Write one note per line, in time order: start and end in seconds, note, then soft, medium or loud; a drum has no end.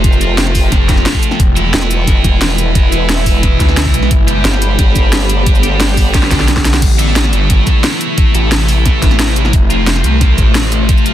0.00 0.71 F1 loud
0.00 1.36 C3 medium
0.00 0.19 F3 medium
0.00 1.37 F3 medium
0.00 1.36 A3 medium
0.00 0.19 C4 medium
0.00 0.19 F4 loud
0.00 1.37 F4 medium
0.00 1.40 A4 medium
0.00 2.24 D5 medium
0.00 1.40 G5 medium
0.00 1.40 C6 medium
0.04 kick loud
0.04 closed hi-hat medium
0.13 shaker soft
0.21 1.39 F3 medium
0.21 1.39 C4 medium
0.21 1.39 F4 loud
0.21 closed hi-hat medium
0.21 shaker medium
0.38 snare loud
0.38 closed hi-hat medium
0.46 snare medium
0.55 kick medium
0.55 open hi-hat medium
0.55 shaker medium
0.72 1.04 F1 loud
0.72 kick loud
0.72 snare soft
0.72 closed hi-hat medium
0.89 kick loud
0.89 snare soft
0.89 closed hi-hat medium
0.89 shaker medium
0.97 snare soft
1.06 snare loud
1.06 closed hi-hat medium
1.14 kick medium
1.23 closed hi-hat medium
1.23 shaker medium
1.31 snare soft
1.40 1.72 E1 loud
1.40 4.08 B2 medium
1.40 4.08 E3 medium
1.40 4.08 G#3 medium
1.40 4.08 E4 medium
1.40 4.95 B4 medium
1.40 kick loud
1.40 closed hi-hat medium
1.56 2.90 E3 medium
1.56 2.90 B3 medium
1.56 2.90 E4 medium
1.56 closed hi-hat medium
1.56 shaker medium
1.61 4.11 G#5 medium
1.67 5.11 E5 medium
1.74 2.06 E1 medium
1.74 snare loud
1.74 closed hi-hat medium
1.82 snare medium
1.91 closed hi-hat medium
1.91 shaker medium
2.07 3.42 E1 loud
2.07 kick loud
2.07 snare soft
2.07 closed hi-hat medium
2.24 kick loud
2.24 closed hi-hat medium
2.24 shaker medium
2.41 snare loud
2.41 closed hi-hat medium
2.58 6.82 B5 medium
2.58 closed hi-hat medium
2.58 shaker medium
2.75 kick loud
2.75 closed hi-hat loud
2.92 4.10 E3 medium
2.92 4.10 B3 medium
2.92 4.10 E4 loud
2.92 closed hi-hat medium
2.92 shaker medium
3.09 snare loud
3.09 closed hi-hat medium
3.26 kick medium
3.26 open hi-hat medium
3.26 shaker medium
3.43 3.59 E1 loud
3.43 kick loud
3.43 snare soft
3.43 closed hi-hat loud
3.60 3.93 D2 medium
3.60 kick loud
3.60 snare soft
3.60 closed hi-hat medium
3.60 shaker medium
3.69 snare soft
3.77 snare loud
3.77 closed hi-hat loud
3.85 kick medium
3.94 4.10 B1 medium
3.94 closed hi-hat medium
3.94 shaker medium
4.02 snare soft
4.11 4.43 G1 loud
4.11 6.79 D3 medium
4.11 6.79 G3 medium
4.11 6.79 B3 medium
4.11 6.79 G4 medium
4.11 6.82 A4 medium
4.11 kick loud
4.11 closed hi-hat loud
4.28 5.61 G3 medium
4.28 5.61 D4 medium
4.28 5.61 G4 loud
4.28 closed hi-hat medium
4.28 shaker medium
4.40 6.82 D5 medium
4.45 4.77 G1 medium
4.45 snare loud
4.45 closed hi-hat loud
4.53 snare soft
4.62 closed hi-hat medium
4.62 shaker medium
4.77 6.13 G1 loud
4.77 6.82 G5 medium
4.77 kick loud
4.77 snare soft
4.77 closed hi-hat loud
4.96 kick loud
4.96 closed hi-hat medium
4.96 shaker medium
5.13 snare loud
5.13 closed hi-hat loud
5.30 closed hi-hat medium
5.30 shaker medium
5.46 kick loud
5.46 closed hi-hat medium
5.55 shaker soft
5.63 6.30 G3 medium
5.63 6.30 D4 medium
5.63 6.30 G4 loud
5.63 closed hi-hat medium
5.63 shaker medium
5.80 snare loud
5.80 closed hi-hat loud
5.97 kick medium
5.97 open hi-hat medium
5.97 shaker medium
6.14 6.30 A1 loud
6.14 kick loud
6.14 snare medium
6.14 closed hi-hat loud
6.23 snare medium
6.31 6.81 B1 loud
6.31 6.38 G3 medium
6.31 6.38 D4 medium
6.31 6.38 G4 medium
6.31 kick loud
6.31 snare medium
6.31 closed hi-hat medium
6.31 shaker medium
6.39 6.47 G3 medium
6.39 6.47 D4 medium
6.39 6.47 G4 loud
6.39 snare medium
6.48 snare medium
6.48 closed hi-hat loud
6.57 kick medium
6.57 snare medium
6.65 snare loud
6.65 closed hi-hat medium
6.65 shaker medium
6.74 snare medium
6.74 shaker soft
6.82 7.32 A1 loud
6.82 11.14 C3 medium
6.82 9.51 E3 medium
6.82 11.14 A3 medium
6.82 9.51 E4 medium
6.82 kick loud
6.82 closed hi-hat loud
6.82 crash loud
6.99 8.33 A3 medium
6.99 8.33 E4 medium
6.99 8.33 A4 loud
6.99 closed hi-hat medium
6.99 shaker medium
7.16 snare loud
7.16 closed hi-hat medium
7.24 snare medium
7.33 7.65 G1 loud
7.33 closed hi-hat medium
7.33 shaker medium
7.50 kick loud
7.50 snare soft
7.50 closed hi-hat loud
7.67 kick loud
7.67 closed hi-hat medium
7.67 shaker medium
7.84 snare loud
7.84 closed hi-hat loud
8.01 closed hi-hat medium
8.01 shaker medium
8.18 kick loud
8.18 closed hi-hat medium
8.34 9.52 A1 loud
8.34 9.52 A3 medium
8.34 9.52 E4 medium
8.34 9.52 A4 loud
8.34 closed hi-hat medium
8.34 shaker medium
8.52 snare loud
8.52 closed hi-hat medium
8.69 open hi-hat medium
8.69 shaker medium
8.85 kick loud
8.85 snare soft
8.85 closed hi-hat medium
9.02 kick loud
9.02 snare soft
9.02 closed hi-hat medium
9.02 shaker medium
9.11 snare medium
9.19 snare loud
9.19 closed hi-hat loud
9.36 closed hi-hat medium
9.36 shaker medium
9.45 snare soft
9.53 10.03 F1 loud
9.53 11.14 F3 medium
9.53 11.14 F4 medium
9.53 kick loud
9.53 closed hi-hat medium
9.70 11.04 F3 medium
9.70 11.04 C4 medium
9.70 11.04 F4 loud
9.70 closed hi-hat medium
9.70 shaker medium
9.87 snare loud
9.87 closed hi-hat medium
9.96 snare medium
10.04 10.37 C2 medium
10.04 closed hi-hat medium
10.04 shaker medium
10.21 kick loud
10.21 snare soft
10.21 closed hi-hat loud
10.38 10.88 A1 loud
10.38 kick loud
10.38 closed hi-hat medium
10.38 shaker medium
10.55 snare loud
10.55 closed hi-hat medium
10.72 closed hi-hat medium
10.72 shaker medium
10.89 kick loud
10.89 closed hi-hat medium
10.97 shaker soft
11.06 11.14 F3 medium
11.06 11.14 C4 medium
11.06 11.14 F4 medium
11.06 closed hi-hat medium
11.06 shaker medium